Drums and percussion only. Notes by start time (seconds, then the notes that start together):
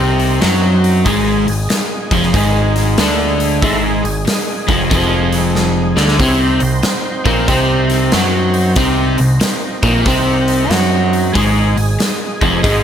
0.20 open hi-hat
0.42 snare, open hi-hat
0.84 open hi-hat
1.06 kick, open hi-hat
1.48 open hi-hat
1.70 snare, open hi-hat
2.11 kick, open hi-hat
2.23 snare
2.34 kick, open hi-hat
2.76 snare, open hi-hat
2.98 snare, open hi-hat
3.40 open hi-hat
3.62 kick, open hi-hat
4.05 open hi-hat
4.27 snare, open hi-hat
4.69 kick, open hi-hat
4.91 kick, open hi-hat
5.32 snare, open hi-hat
5.55 snare
5.97 snare
6.08 snare
6.20 kick, open hi-hat
6.60 open hi-hat
6.83 snare, open hi-hat
7.26 kick, open hi-hat
7.48 kick, open hi-hat
7.90 snare, open hi-hat
8.12 snare, open hi-hat
8.54 open hi-hat
8.76 kick, open hi-hat
9.18 open hi-hat
9.41 snare, open hi-hat
9.83 kick, open hi-hat
10.06 kick, open hi-hat
10.48 open hi-hat
10.71 snare, open hi-hat
11.13 open hi-hat
11.35 kick, open hi-hat
11.77 open hi-hat
12.00 snare, open hi-hat
12.41 kick, open hi-hat
12.64 kick, open hi-hat